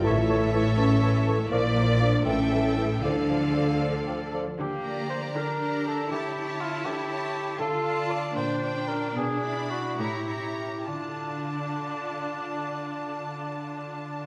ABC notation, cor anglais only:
X:1
M:6/8
L:1/8
Q:3/8=77
K:Dm
V:1 name="Cor anglais"
^c c c c c c | d d d e e e | d d d d d d | G2 c B2 A |
G2 F G3 | A2 d c2 B | ^G2 ^F =G3 | D6- |
D6 |]